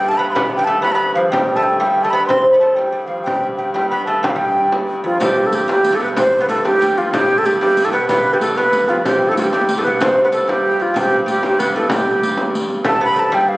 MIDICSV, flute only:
0, 0, Header, 1, 2, 480
1, 0, Start_track
1, 0, Tempo, 322928
1, 523, Time_signature, 6, 3, 24, 8
1, 10600, Tempo, 317965
1, 20320, End_track
2, 0, Start_track
2, 0, Title_t, "Flute"
2, 0, Program_c, 0, 73
2, 0, Note_on_c, 0, 79, 103
2, 126, Note_on_c, 0, 81, 93
2, 149, Note_off_c, 0, 79, 0
2, 259, Note_on_c, 0, 83, 78
2, 281, Note_off_c, 0, 81, 0
2, 421, Note_off_c, 0, 83, 0
2, 447, Note_on_c, 0, 84, 67
2, 487, Note_on_c, 0, 83, 85
2, 509, Note_off_c, 0, 84, 0
2, 824, Note_off_c, 0, 83, 0
2, 833, Note_on_c, 0, 79, 96
2, 958, Note_on_c, 0, 81, 78
2, 980, Note_off_c, 0, 79, 0
2, 1201, Note_off_c, 0, 81, 0
2, 1210, Note_on_c, 0, 83, 97
2, 1366, Note_on_c, 0, 81, 76
2, 1388, Note_off_c, 0, 83, 0
2, 1396, Note_on_c, 0, 83, 91
2, 1418, Note_off_c, 0, 81, 0
2, 1701, Note_off_c, 0, 83, 0
2, 1710, Note_on_c, 0, 77, 66
2, 1799, Note_off_c, 0, 77, 0
2, 1939, Note_on_c, 0, 79, 91
2, 2321, Note_on_c, 0, 81, 84
2, 2343, Note_off_c, 0, 79, 0
2, 2423, Note_on_c, 0, 79, 76
2, 2446, Note_off_c, 0, 81, 0
2, 2665, Note_off_c, 0, 79, 0
2, 2674, Note_on_c, 0, 79, 83
2, 3025, Note_on_c, 0, 81, 83
2, 3047, Note_off_c, 0, 79, 0
2, 3128, Note_on_c, 0, 83, 83
2, 3150, Note_off_c, 0, 81, 0
2, 3354, Note_off_c, 0, 83, 0
2, 3363, Note_on_c, 0, 84, 97
2, 3723, Note_off_c, 0, 84, 0
2, 3733, Note_on_c, 0, 83, 98
2, 3842, Note_off_c, 0, 83, 0
2, 3851, Note_on_c, 0, 81, 76
2, 4087, Note_on_c, 0, 79, 79
2, 4109, Note_off_c, 0, 81, 0
2, 4559, Note_on_c, 0, 77, 67
2, 4581, Note_off_c, 0, 79, 0
2, 4787, Note_off_c, 0, 77, 0
2, 4795, Note_on_c, 0, 79, 81
2, 5160, Note_off_c, 0, 79, 0
2, 5305, Note_on_c, 0, 79, 68
2, 5544, Note_off_c, 0, 79, 0
2, 5567, Note_on_c, 0, 79, 81
2, 5786, Note_off_c, 0, 79, 0
2, 5795, Note_on_c, 0, 83, 82
2, 6020, Note_off_c, 0, 83, 0
2, 6029, Note_on_c, 0, 81, 70
2, 6265, Note_off_c, 0, 81, 0
2, 6284, Note_on_c, 0, 79, 69
2, 6391, Note_on_c, 0, 77, 62
2, 6413, Note_off_c, 0, 79, 0
2, 6484, Note_on_c, 0, 79, 85
2, 6506, Note_off_c, 0, 77, 0
2, 7048, Note_off_c, 0, 79, 0
2, 7510, Note_on_c, 0, 65, 80
2, 7726, Note_off_c, 0, 65, 0
2, 7754, Note_on_c, 0, 67, 87
2, 8122, Note_on_c, 0, 69, 89
2, 8144, Note_off_c, 0, 67, 0
2, 8251, Note_on_c, 0, 67, 80
2, 8273, Note_off_c, 0, 69, 0
2, 8471, Note_off_c, 0, 67, 0
2, 8478, Note_on_c, 0, 67, 93
2, 8856, Note_on_c, 0, 69, 89
2, 8879, Note_off_c, 0, 67, 0
2, 8952, Note_off_c, 0, 69, 0
2, 8961, Note_on_c, 0, 71, 88
2, 9050, Note_off_c, 0, 71, 0
2, 9178, Note_on_c, 0, 72, 112
2, 9492, Note_off_c, 0, 72, 0
2, 9492, Note_on_c, 0, 72, 76
2, 9528, Note_on_c, 0, 71, 98
2, 9550, Note_off_c, 0, 72, 0
2, 9638, Note_off_c, 0, 71, 0
2, 9647, Note_on_c, 0, 69, 96
2, 9867, Note_off_c, 0, 69, 0
2, 9900, Note_on_c, 0, 67, 100
2, 10373, Note_on_c, 0, 65, 86
2, 10396, Note_off_c, 0, 67, 0
2, 10610, Note_on_c, 0, 67, 100
2, 10632, Note_off_c, 0, 65, 0
2, 10982, Note_on_c, 0, 69, 97
2, 11005, Note_off_c, 0, 67, 0
2, 11090, Note_on_c, 0, 67, 86
2, 11113, Note_off_c, 0, 69, 0
2, 11315, Note_off_c, 0, 67, 0
2, 11324, Note_on_c, 0, 67, 99
2, 11679, Note_on_c, 0, 69, 102
2, 11702, Note_off_c, 0, 67, 0
2, 11788, Note_off_c, 0, 69, 0
2, 11797, Note_on_c, 0, 71, 83
2, 12022, Note_off_c, 0, 71, 0
2, 12031, Note_on_c, 0, 71, 97
2, 12417, Note_on_c, 0, 67, 91
2, 12440, Note_off_c, 0, 71, 0
2, 12514, Note_off_c, 0, 67, 0
2, 12523, Note_on_c, 0, 69, 92
2, 12766, Note_on_c, 0, 71, 113
2, 12789, Note_off_c, 0, 69, 0
2, 13249, Note_on_c, 0, 65, 86
2, 13272, Note_off_c, 0, 71, 0
2, 13483, Note_off_c, 0, 65, 0
2, 13492, Note_on_c, 0, 67, 86
2, 13856, Note_on_c, 0, 69, 91
2, 13879, Note_off_c, 0, 67, 0
2, 13965, Note_off_c, 0, 69, 0
2, 13974, Note_on_c, 0, 67, 70
2, 14011, Note_on_c, 0, 65, 55
2, 14034, Note_off_c, 0, 67, 0
2, 14082, Note_on_c, 0, 67, 84
2, 14104, Note_off_c, 0, 65, 0
2, 14187, Note_off_c, 0, 67, 0
2, 14196, Note_on_c, 0, 67, 88
2, 14540, Note_off_c, 0, 67, 0
2, 14592, Note_on_c, 0, 69, 85
2, 14642, Note_off_c, 0, 69, 0
2, 14674, Note_on_c, 0, 71, 78
2, 14907, Note_off_c, 0, 71, 0
2, 14938, Note_on_c, 0, 72, 93
2, 15272, Note_off_c, 0, 72, 0
2, 15295, Note_on_c, 0, 71, 94
2, 15349, Note_off_c, 0, 71, 0
2, 15422, Note_on_c, 0, 69, 73
2, 15671, Note_on_c, 0, 67, 88
2, 15694, Note_off_c, 0, 69, 0
2, 16168, Note_on_c, 0, 65, 83
2, 16191, Note_off_c, 0, 67, 0
2, 16412, Note_on_c, 0, 67, 95
2, 16435, Note_off_c, 0, 65, 0
2, 16753, Note_off_c, 0, 67, 0
2, 16880, Note_on_c, 0, 67, 83
2, 17090, Note_off_c, 0, 67, 0
2, 17127, Note_on_c, 0, 67, 87
2, 17337, Note_on_c, 0, 71, 80
2, 17360, Note_off_c, 0, 67, 0
2, 17574, Note_off_c, 0, 71, 0
2, 17595, Note_on_c, 0, 69, 73
2, 17806, Note_off_c, 0, 69, 0
2, 17816, Note_on_c, 0, 67, 79
2, 18708, Note_off_c, 0, 67, 0
2, 19277, Note_on_c, 0, 81, 87
2, 19483, Note_off_c, 0, 81, 0
2, 19529, Note_on_c, 0, 83, 94
2, 19751, Note_on_c, 0, 81, 83
2, 19774, Note_off_c, 0, 83, 0
2, 19981, Note_on_c, 0, 79, 92
2, 20004, Note_off_c, 0, 81, 0
2, 20195, Note_on_c, 0, 77, 82
2, 20218, Note_off_c, 0, 79, 0
2, 20320, Note_off_c, 0, 77, 0
2, 20320, End_track
0, 0, End_of_file